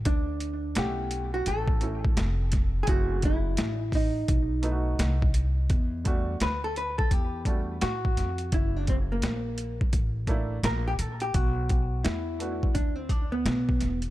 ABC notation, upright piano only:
X:1
M:4/4
L:1/8
Q:"Swing 16ths" 1/4=85
K:Em
V:1 name="Upright piano"
z2 [A,^CEf]3 [A,CEA] z2 | [A,CE^G] z4 [A,B,^DEF] z2 | z [G,A,DF] z3 [G,A,DF] z2 | z4 z [A,^A,DE] z2 |
z3 [A,B,DF] z4 |]